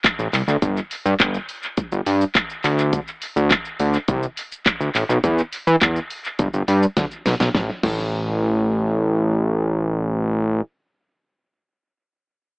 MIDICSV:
0, 0, Header, 1, 3, 480
1, 0, Start_track
1, 0, Tempo, 576923
1, 518, Time_signature, 4, 2, 24, 8
1, 10470, End_track
2, 0, Start_track
2, 0, Title_t, "Analog synth bass"
2, 0, Program_c, 0, 38
2, 159, Note_on_c, 0, 33, 101
2, 233, Note_off_c, 0, 33, 0
2, 278, Note_on_c, 0, 36, 90
2, 352, Note_off_c, 0, 36, 0
2, 398, Note_on_c, 0, 38, 86
2, 472, Note_off_c, 0, 38, 0
2, 518, Note_on_c, 0, 31, 110
2, 667, Note_off_c, 0, 31, 0
2, 879, Note_on_c, 0, 43, 106
2, 953, Note_off_c, 0, 43, 0
2, 998, Note_on_c, 0, 31, 103
2, 1147, Note_off_c, 0, 31, 0
2, 1598, Note_on_c, 0, 31, 97
2, 1672, Note_off_c, 0, 31, 0
2, 1718, Note_on_c, 0, 43, 97
2, 1867, Note_off_c, 0, 43, 0
2, 2198, Note_on_c, 0, 38, 104
2, 2496, Note_off_c, 0, 38, 0
2, 2798, Note_on_c, 0, 38, 112
2, 2947, Note_off_c, 0, 38, 0
2, 3158, Note_on_c, 0, 38, 96
2, 3307, Note_off_c, 0, 38, 0
2, 3398, Note_on_c, 0, 36, 106
2, 3547, Note_off_c, 0, 36, 0
2, 3998, Note_on_c, 0, 38, 92
2, 4073, Note_off_c, 0, 38, 0
2, 4118, Note_on_c, 0, 33, 98
2, 4193, Note_off_c, 0, 33, 0
2, 4238, Note_on_c, 0, 35, 93
2, 4313, Note_off_c, 0, 35, 0
2, 4358, Note_on_c, 0, 40, 117
2, 4507, Note_off_c, 0, 40, 0
2, 4719, Note_on_c, 0, 52, 120
2, 4793, Note_off_c, 0, 52, 0
2, 4838, Note_on_c, 0, 40, 88
2, 4987, Note_off_c, 0, 40, 0
2, 5318, Note_on_c, 0, 31, 104
2, 5393, Note_off_c, 0, 31, 0
2, 5439, Note_on_c, 0, 31, 102
2, 5514, Note_off_c, 0, 31, 0
2, 5559, Note_on_c, 0, 43, 101
2, 5708, Note_off_c, 0, 43, 0
2, 5797, Note_on_c, 0, 38, 100
2, 5872, Note_off_c, 0, 38, 0
2, 6039, Note_on_c, 0, 35, 97
2, 6113, Note_off_c, 0, 35, 0
2, 6159, Note_on_c, 0, 35, 89
2, 6233, Note_off_c, 0, 35, 0
2, 6278, Note_on_c, 0, 33, 99
2, 6412, Note_off_c, 0, 33, 0
2, 6518, Note_on_c, 0, 33, 108
2, 8831, Note_off_c, 0, 33, 0
2, 10470, End_track
3, 0, Start_track
3, 0, Title_t, "Drums"
3, 37, Note_on_c, 9, 36, 127
3, 37, Note_on_c, 9, 39, 122
3, 38, Note_on_c, 9, 42, 78
3, 38, Note_on_c, 9, 82, 76
3, 120, Note_off_c, 9, 36, 0
3, 120, Note_off_c, 9, 39, 0
3, 121, Note_off_c, 9, 42, 0
3, 121, Note_off_c, 9, 82, 0
3, 159, Note_on_c, 9, 82, 53
3, 243, Note_off_c, 9, 82, 0
3, 279, Note_on_c, 9, 39, 63
3, 279, Note_on_c, 9, 46, 82
3, 279, Note_on_c, 9, 82, 57
3, 362, Note_off_c, 9, 39, 0
3, 362, Note_off_c, 9, 46, 0
3, 362, Note_off_c, 9, 82, 0
3, 401, Note_on_c, 9, 82, 73
3, 484, Note_off_c, 9, 82, 0
3, 518, Note_on_c, 9, 36, 105
3, 518, Note_on_c, 9, 42, 79
3, 518, Note_on_c, 9, 82, 82
3, 601, Note_off_c, 9, 36, 0
3, 601, Note_off_c, 9, 42, 0
3, 601, Note_off_c, 9, 82, 0
3, 640, Note_on_c, 9, 82, 53
3, 723, Note_off_c, 9, 82, 0
3, 757, Note_on_c, 9, 46, 69
3, 757, Note_on_c, 9, 82, 49
3, 841, Note_off_c, 9, 46, 0
3, 841, Note_off_c, 9, 82, 0
3, 880, Note_on_c, 9, 82, 73
3, 963, Note_off_c, 9, 82, 0
3, 997, Note_on_c, 9, 42, 80
3, 997, Note_on_c, 9, 82, 78
3, 998, Note_on_c, 9, 36, 118
3, 998, Note_on_c, 9, 39, 115
3, 1080, Note_off_c, 9, 42, 0
3, 1080, Note_off_c, 9, 82, 0
3, 1081, Note_off_c, 9, 36, 0
3, 1082, Note_off_c, 9, 39, 0
3, 1117, Note_on_c, 9, 82, 55
3, 1200, Note_off_c, 9, 82, 0
3, 1237, Note_on_c, 9, 46, 74
3, 1237, Note_on_c, 9, 82, 54
3, 1320, Note_off_c, 9, 46, 0
3, 1320, Note_off_c, 9, 82, 0
3, 1355, Note_on_c, 9, 82, 92
3, 1438, Note_off_c, 9, 82, 0
3, 1475, Note_on_c, 9, 42, 77
3, 1475, Note_on_c, 9, 82, 78
3, 1478, Note_on_c, 9, 36, 121
3, 1558, Note_off_c, 9, 42, 0
3, 1558, Note_off_c, 9, 82, 0
3, 1561, Note_off_c, 9, 36, 0
3, 1597, Note_on_c, 9, 82, 57
3, 1680, Note_off_c, 9, 82, 0
3, 1717, Note_on_c, 9, 46, 79
3, 1717, Note_on_c, 9, 82, 60
3, 1801, Note_off_c, 9, 46, 0
3, 1801, Note_off_c, 9, 82, 0
3, 1839, Note_on_c, 9, 82, 93
3, 1923, Note_off_c, 9, 82, 0
3, 1956, Note_on_c, 9, 36, 127
3, 1956, Note_on_c, 9, 39, 122
3, 1957, Note_on_c, 9, 42, 76
3, 1957, Note_on_c, 9, 82, 78
3, 2039, Note_off_c, 9, 36, 0
3, 2039, Note_off_c, 9, 39, 0
3, 2040, Note_off_c, 9, 42, 0
3, 2040, Note_off_c, 9, 82, 0
3, 2078, Note_on_c, 9, 82, 51
3, 2161, Note_off_c, 9, 82, 0
3, 2197, Note_on_c, 9, 39, 64
3, 2198, Note_on_c, 9, 46, 81
3, 2198, Note_on_c, 9, 82, 56
3, 2281, Note_off_c, 9, 39, 0
3, 2281, Note_off_c, 9, 46, 0
3, 2281, Note_off_c, 9, 82, 0
3, 2320, Note_on_c, 9, 82, 74
3, 2403, Note_off_c, 9, 82, 0
3, 2437, Note_on_c, 9, 42, 81
3, 2437, Note_on_c, 9, 82, 79
3, 2438, Note_on_c, 9, 36, 99
3, 2520, Note_off_c, 9, 42, 0
3, 2520, Note_off_c, 9, 82, 0
3, 2521, Note_off_c, 9, 36, 0
3, 2560, Note_on_c, 9, 82, 53
3, 2643, Note_off_c, 9, 82, 0
3, 2677, Note_on_c, 9, 46, 72
3, 2677, Note_on_c, 9, 82, 48
3, 2760, Note_off_c, 9, 46, 0
3, 2760, Note_off_c, 9, 82, 0
3, 2800, Note_on_c, 9, 82, 71
3, 2883, Note_off_c, 9, 82, 0
3, 2917, Note_on_c, 9, 42, 80
3, 2917, Note_on_c, 9, 82, 82
3, 2918, Note_on_c, 9, 36, 119
3, 2918, Note_on_c, 9, 39, 116
3, 3000, Note_off_c, 9, 42, 0
3, 3000, Note_off_c, 9, 82, 0
3, 3001, Note_off_c, 9, 36, 0
3, 3002, Note_off_c, 9, 39, 0
3, 3037, Note_on_c, 9, 82, 55
3, 3121, Note_off_c, 9, 82, 0
3, 3157, Note_on_c, 9, 46, 73
3, 3157, Note_on_c, 9, 82, 55
3, 3240, Note_off_c, 9, 46, 0
3, 3240, Note_off_c, 9, 82, 0
3, 3275, Note_on_c, 9, 82, 92
3, 3358, Note_off_c, 9, 82, 0
3, 3395, Note_on_c, 9, 42, 78
3, 3395, Note_on_c, 9, 82, 76
3, 3398, Note_on_c, 9, 36, 125
3, 3478, Note_off_c, 9, 42, 0
3, 3478, Note_off_c, 9, 82, 0
3, 3481, Note_off_c, 9, 36, 0
3, 3518, Note_on_c, 9, 82, 60
3, 3601, Note_off_c, 9, 82, 0
3, 3638, Note_on_c, 9, 46, 84
3, 3638, Note_on_c, 9, 82, 62
3, 3722, Note_off_c, 9, 46, 0
3, 3722, Note_off_c, 9, 82, 0
3, 3760, Note_on_c, 9, 82, 89
3, 3843, Note_off_c, 9, 82, 0
3, 3877, Note_on_c, 9, 36, 126
3, 3877, Note_on_c, 9, 39, 116
3, 3878, Note_on_c, 9, 42, 79
3, 3878, Note_on_c, 9, 82, 76
3, 3960, Note_off_c, 9, 36, 0
3, 3960, Note_off_c, 9, 39, 0
3, 3961, Note_off_c, 9, 42, 0
3, 3961, Note_off_c, 9, 82, 0
3, 3999, Note_on_c, 9, 82, 54
3, 4082, Note_off_c, 9, 82, 0
3, 4118, Note_on_c, 9, 39, 61
3, 4119, Note_on_c, 9, 46, 79
3, 4119, Note_on_c, 9, 82, 58
3, 4202, Note_off_c, 9, 39, 0
3, 4202, Note_off_c, 9, 46, 0
3, 4202, Note_off_c, 9, 82, 0
3, 4241, Note_on_c, 9, 82, 74
3, 4324, Note_off_c, 9, 82, 0
3, 4358, Note_on_c, 9, 36, 100
3, 4358, Note_on_c, 9, 42, 82
3, 4358, Note_on_c, 9, 82, 83
3, 4441, Note_off_c, 9, 36, 0
3, 4441, Note_off_c, 9, 42, 0
3, 4441, Note_off_c, 9, 82, 0
3, 4480, Note_on_c, 9, 82, 54
3, 4563, Note_off_c, 9, 82, 0
3, 4598, Note_on_c, 9, 46, 72
3, 4598, Note_on_c, 9, 82, 50
3, 4681, Note_off_c, 9, 46, 0
3, 4681, Note_off_c, 9, 82, 0
3, 4720, Note_on_c, 9, 82, 67
3, 4804, Note_off_c, 9, 82, 0
3, 4837, Note_on_c, 9, 42, 78
3, 4837, Note_on_c, 9, 82, 80
3, 4838, Note_on_c, 9, 36, 121
3, 4839, Note_on_c, 9, 39, 118
3, 4921, Note_off_c, 9, 42, 0
3, 4921, Note_off_c, 9, 82, 0
3, 4922, Note_off_c, 9, 36, 0
3, 4923, Note_off_c, 9, 39, 0
3, 4959, Note_on_c, 9, 82, 52
3, 5042, Note_off_c, 9, 82, 0
3, 5078, Note_on_c, 9, 46, 75
3, 5078, Note_on_c, 9, 82, 52
3, 5161, Note_off_c, 9, 46, 0
3, 5161, Note_off_c, 9, 82, 0
3, 5197, Note_on_c, 9, 82, 87
3, 5280, Note_off_c, 9, 82, 0
3, 5316, Note_on_c, 9, 42, 74
3, 5316, Note_on_c, 9, 82, 75
3, 5318, Note_on_c, 9, 36, 127
3, 5399, Note_off_c, 9, 42, 0
3, 5399, Note_off_c, 9, 82, 0
3, 5402, Note_off_c, 9, 36, 0
3, 5438, Note_on_c, 9, 82, 58
3, 5521, Note_off_c, 9, 82, 0
3, 5559, Note_on_c, 9, 46, 82
3, 5559, Note_on_c, 9, 82, 57
3, 5642, Note_off_c, 9, 46, 0
3, 5642, Note_off_c, 9, 82, 0
3, 5680, Note_on_c, 9, 82, 87
3, 5764, Note_off_c, 9, 82, 0
3, 5797, Note_on_c, 9, 36, 127
3, 5798, Note_on_c, 9, 38, 66
3, 5798, Note_on_c, 9, 42, 79
3, 5798, Note_on_c, 9, 82, 80
3, 5880, Note_off_c, 9, 36, 0
3, 5881, Note_off_c, 9, 38, 0
3, 5881, Note_off_c, 9, 42, 0
3, 5881, Note_off_c, 9, 82, 0
3, 5919, Note_on_c, 9, 82, 54
3, 6002, Note_off_c, 9, 82, 0
3, 6038, Note_on_c, 9, 38, 100
3, 6038, Note_on_c, 9, 46, 77
3, 6038, Note_on_c, 9, 82, 56
3, 6121, Note_off_c, 9, 38, 0
3, 6121, Note_off_c, 9, 46, 0
3, 6121, Note_off_c, 9, 82, 0
3, 6158, Note_on_c, 9, 38, 104
3, 6160, Note_on_c, 9, 82, 75
3, 6241, Note_off_c, 9, 38, 0
3, 6243, Note_off_c, 9, 82, 0
3, 6278, Note_on_c, 9, 36, 108
3, 6278, Note_on_c, 9, 38, 84
3, 6361, Note_off_c, 9, 36, 0
3, 6361, Note_off_c, 9, 38, 0
3, 6518, Note_on_c, 9, 36, 106
3, 6518, Note_on_c, 9, 49, 88
3, 6601, Note_off_c, 9, 36, 0
3, 6601, Note_off_c, 9, 49, 0
3, 10470, End_track
0, 0, End_of_file